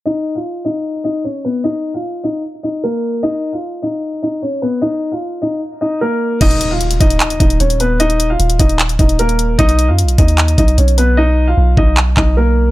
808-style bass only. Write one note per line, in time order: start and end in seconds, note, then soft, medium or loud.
6.41 6.98 D#1 loud
7.00 7.20 D#1 loud
7.40 7.59 D#1 loud
7.60 8.36 D#1 loud
8.40 8.59 D#1 loud
8.59 8.98 D#1 loud
8.99 9.56 D#1 loud
9.59 9.90 B1 loud
9.89 10.05 F#2 loud
10.03 10.18 B1 loud
10.18 10.57 D#2 loud
10.58 10.77 B1 loud
10.78 11.54 B1 loud
11.57 11.77 B1 loud
11.77 12.15 B1 loud
12.17 12.71 B1 loud